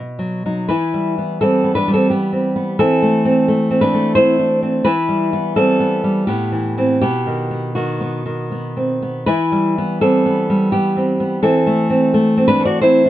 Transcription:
0.00 0.67 B2 soft
0.19 0.44 F#3 soft
0.46 0.68 F#3 soft
0.46 0.68 D#4 soft
0.69 2.76 E3 soft
0.69 1.18 E4 soft
0.69 1.38 B4 medium
0.94 1.41 G3 soft
1.18 1.63 B3 soft
1.41 1.87 G3 soft
1.41 1.74 C4 medium
1.41 1.75 A4 medium
1.64 2.10 B3 soft
1.75 1.92 D4 medium
1.75 1.93 B4 medium
1.88 2.80 G3 soft
1.93 2.10 C4 soft
1.93 2.10 A4 medium
2.10 2.55 B3 soft
2.10 2.77 G4 medium
2.32 2.78 C4 soft
2.56 2.79 B3 soft
2.79 4.80 E3 medium
2.79 3.24 C4 medium
2.79 3.78 A4 medium
3.02 3.47 A3 soft
3.25 3.69 C4 soft
3.48 3.92 A3 soft
3.70 4.15 C4 soft
3.81 4.14 D4 medium
3.81 4.14 B4 medium
3.94 4.84 A3 medium
4.15 4.61 C4 medium
4.15 4.39 E4 medium
4.15 4.81 C5 medium
4.39 4.84 D4 soft
4.62 4.85 C4 medium
4.85 6.23 E3 medium
4.85 5.33 E4 medium
4.85 5.52 B4 medium
5.09 5.55 G3 soft
5.33 5.79 B3 soft
5.56 6.03 G3 soft
5.56 6.23 C4 medium
5.56 6.24 A4 medium
5.80 6.27 B3 soft
6.04 6.27 G3 soft
6.27 6.99 A2 medium
6.27 6.97 B3 soft
6.27 6.98 G4 medium
6.52 6.76 E3 soft
6.78 6.99 E3 soft
6.78 6.99 C4 soft
7.01 9.24 B2 medium
7.01 7.50 B3 medium
7.01 7.73 G4 medium
7.27 7.74 D#3 soft
7.51 7.75 B3 soft
7.75 8.24 D#3 soft
7.75 7.99 B3 soft
7.75 8.48 F#4 soft
8.01 8.50 B3 soft
8.26 9.27 D#3 soft
8.52 9.01 B3 soft
8.77 9.27 C4 soft
9.02 9.27 B3 soft
9.26 11.38 E3 medium
9.26 9.78 E4 medium
9.26 9.98 B4 medium
9.52 10.01 G3 soft
9.78 10.25 B3 soft
10.01 10.48 G3 soft
10.01 10.69 C4 medium
10.01 10.70 A4 medium
10.26 10.72 B3 soft
10.50 11.42 G3 soft
10.72 11.19 B3 medium
10.72 11.39 G4 medium
10.97 11.42 C4 soft
11.20 11.43 B3 soft
11.43 13.10 E3 medium
11.43 11.89 C4 medium
11.43 12.44 A4 medium
11.66 12.13 A3 soft
11.90 12.36 C4 soft
12.14 12.58 A3 medium
12.37 12.81 C4 soft
12.48 12.64 D4 medium
12.48 12.65 B4 medium
12.60 13.10 A3 medium
12.65 12.81 F#4 medium
12.65 12.81 D5 medium
12.81 13.10 C4 medium
12.81 13.05 E4 medium
12.81 13.10 C5 medium
13.06 13.10 D4 soft

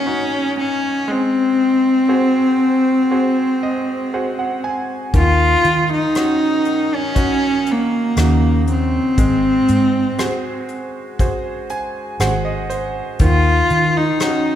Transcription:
0.00 1.04 D#3 medium
0.00 0.06 C#4 soft
0.00 0.58 C#4 medium
0.00 0.06 D#4 soft
0.00 0.07 F#4 soft
0.06 1.04 C#4 soft
0.06 1.04 D#4 soft
0.06 1.05 F#4 soft
0.60 1.12 C#4 medium
1.08 5.10 G#3 medium
1.08 4.64 C4 medium
2.08 3.07 F#4 soft
2.08 3.07 G#4 soft
2.08 3.07 C5 soft
3.11 4.10 F#4 soft
3.11 4.10 G#4 soft
3.11 4.10 C5 medium
3.63 4.10 D#5 medium
4.14 5.12 F#4 soft
4.14 5.12 G#4 soft
4.14 5.12 C5 soft
4.14 4.37 F#5 medium
4.39 4.62 F#5 medium
4.64 5.11 G#5 medium
5.14 5.54 D#2 medium
5.14 9.14 D#3 medium
5.14 5.88 F4 medium
5.14 kick medium
5.14 closed hi-hat medium
5.64 6.05 D#3 medium
5.64 closed hi-hat soft
5.94 6.96 D#4 medium
6.15 7.14 C#4 soft
6.15 7.13 D#4 soft
6.15 7.14 F#4 soft
6.15 cross-stick medium
6.15 closed hi-hat medium
6.65 closed hi-hat soft
6.95 7.73 C#4 medium
7.15 8.13 C#4 soft
7.15 8.14 D#4 soft
7.15 8.14 F#4 soft
7.15 kick medium
7.15 closed hi-hat medium
7.66 closed hi-hat soft
7.71 8.70 A#3 medium
8.17 8.98 D#2 medium
8.17 9.15 C#3 soft
8.17 9.15 D#4 soft
8.17 9.15 F#4 soft
8.17 cross-stick medium
8.17 closed hi-hat medium
8.67 closed hi-hat soft
8.73 10.68 C4 medium
9.18 9.58 G#1 medium
9.18 13.16 G#3 medium
9.18 kick medium
9.18 closed hi-hat medium
9.68 10.09 G#2 medium
9.68 closed hi-hat soft
10.18 11.16 F#4 soft
10.18 11.17 G#4 soft
10.18 11.17 C5 soft
10.18 cross-stick medium
10.18 closed hi-hat medium
10.68 closed hi-hat soft
11.19 12.17 F#4 soft
11.19 12.17 G#4 soft
11.19 12.17 C5 soft
11.19 kick medium
11.19 closed hi-hat medium
11.70 12.17 G#5 medium
11.70 closed hi-hat soft
12.20 13.00 G#1 medium
12.20 13.17 F#4 soft
12.20 13.17 G#4 soft
12.20 12.68 C5 soft
12.20 12.43 F#5 medium
12.20 cross-stick medium
12.20 closed hi-hat medium
12.45 12.68 D#5 medium
12.70 13.16 C5 medium
12.70 closed hi-hat soft
13.19 13.60 D#2 medium
13.19 14.55 D#3 medium
13.19 13.99 F4 medium
13.19 kick medium
13.19 closed hi-hat medium
13.70 14.11 D#3 medium
13.70 closed hi-hat soft
13.97 14.55 D#4 medium
14.20 14.55 C#4 soft
14.20 14.55 D#4 soft
14.20 14.55 F#4 medium
14.20 cross-stick medium
14.20 closed hi-hat medium

